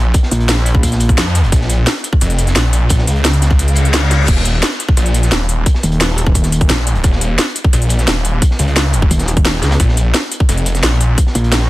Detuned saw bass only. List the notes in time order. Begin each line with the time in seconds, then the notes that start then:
Already playing: A#1
1.18 F2
1.52 A#1
2.21 F1
2.56 A#1
2.90 A#1
3.07 C#2
4.28 D#1
4.97 A#1
5.32 D#1
6.70 A#1
7.04 D#1
7.73 A#1
8.08 D#1
8.59 C#2
9.80 A#1
10.49 F1
10.83 A#1